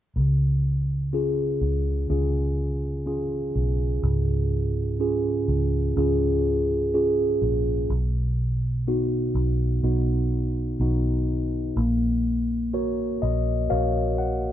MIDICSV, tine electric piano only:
0, 0, Header, 1, 2, 480
1, 0, Start_track
1, 0, Tempo, 967742
1, 79, Time_signature, 4, 2, 24, 8
1, 7204, End_track
2, 0, Start_track
2, 0, Title_t, "Tine electric piano"
2, 0, Program_c, 0, 4
2, 80, Note_on_c, 0, 49, 54
2, 186, Control_c, 0, 64, 127
2, 560, Note_on_c, 0, 61, 38
2, 562, Note_on_c, 0, 65, 35
2, 567, Note_on_c, 0, 68, 40
2, 1025, Note_off_c, 0, 61, 0
2, 1026, Note_off_c, 0, 65, 0
2, 1028, Note_off_c, 0, 68, 0
2, 1039, Note_on_c, 0, 61, 37
2, 1041, Note_on_c, 0, 65, 36
2, 1043, Note_on_c, 0, 68, 40
2, 1504, Note_off_c, 0, 61, 0
2, 1506, Note_off_c, 0, 65, 0
2, 1506, Note_off_c, 0, 68, 0
2, 1518, Note_on_c, 0, 61, 37
2, 1523, Note_on_c, 0, 65, 33
2, 1524, Note_on_c, 0, 68, 41
2, 1979, Note_off_c, 0, 49, 0
2, 1984, Note_off_c, 0, 61, 0
2, 1986, Note_off_c, 0, 65, 0
2, 1987, Note_off_c, 0, 68, 0
2, 2001, Note_on_c, 0, 44, 48
2, 2480, Note_on_c, 0, 61, 36
2, 2481, Note_on_c, 0, 65, 33
2, 2484, Note_on_c, 0, 68, 44
2, 2945, Note_off_c, 0, 61, 0
2, 2945, Note_off_c, 0, 65, 0
2, 2947, Note_off_c, 0, 68, 0
2, 2959, Note_on_c, 0, 61, 41
2, 2963, Note_on_c, 0, 65, 33
2, 2966, Note_on_c, 0, 68, 44
2, 3425, Note_off_c, 0, 61, 0
2, 3426, Note_off_c, 0, 65, 0
2, 3428, Note_off_c, 0, 68, 0
2, 3442, Note_on_c, 0, 61, 38
2, 3442, Note_on_c, 0, 65, 34
2, 3443, Note_on_c, 0, 68, 43
2, 3900, Note_off_c, 0, 44, 0
2, 3906, Note_off_c, 0, 61, 0
2, 3906, Note_off_c, 0, 65, 0
2, 3907, Note_off_c, 0, 68, 0
2, 3922, Note_on_c, 0, 47, 53
2, 3926, Control_c, 0, 64, 0
2, 4017, Control_c, 0, 64, 127
2, 4402, Note_on_c, 0, 59, 38
2, 4402, Note_on_c, 0, 63, 36
2, 4406, Note_on_c, 0, 66, 48
2, 4866, Note_off_c, 0, 59, 0
2, 4866, Note_off_c, 0, 63, 0
2, 4868, Note_off_c, 0, 66, 0
2, 4878, Note_on_c, 0, 59, 41
2, 4880, Note_on_c, 0, 63, 36
2, 4881, Note_on_c, 0, 66, 45
2, 5344, Note_off_c, 0, 59, 0
2, 5345, Note_off_c, 0, 63, 0
2, 5345, Note_off_c, 0, 66, 0
2, 5358, Note_on_c, 0, 59, 39
2, 5361, Note_on_c, 0, 63, 37
2, 5361, Note_on_c, 0, 66, 42
2, 5821, Note_off_c, 0, 47, 0
2, 5824, Note_off_c, 0, 59, 0
2, 5825, Note_off_c, 0, 63, 0
2, 5826, Note_off_c, 0, 66, 0
2, 5839, Note_on_c, 0, 58, 54
2, 5844, Control_c, 0, 64, 0
2, 5923, Control_c, 0, 64, 127
2, 6316, Note_on_c, 0, 66, 40
2, 6320, Note_on_c, 0, 70, 38
2, 6320, Note_on_c, 0, 73, 44
2, 6557, Note_on_c, 0, 75, 54
2, 6781, Note_off_c, 0, 75, 0
2, 6783, Note_off_c, 0, 66, 0
2, 6785, Note_off_c, 0, 70, 0
2, 6785, Note_off_c, 0, 73, 0
2, 6793, Note_on_c, 0, 66, 37
2, 6793, Note_on_c, 0, 70, 34
2, 6795, Note_on_c, 0, 77, 54
2, 6797, Note_on_c, 0, 73, 42
2, 7020, Note_off_c, 0, 77, 0
2, 7035, Note_on_c, 0, 78, 53
2, 7204, Note_off_c, 0, 58, 0
2, 7204, Note_off_c, 0, 66, 0
2, 7204, Note_off_c, 0, 70, 0
2, 7204, Note_off_c, 0, 73, 0
2, 7204, Note_off_c, 0, 78, 0
2, 7204, End_track
0, 0, End_of_file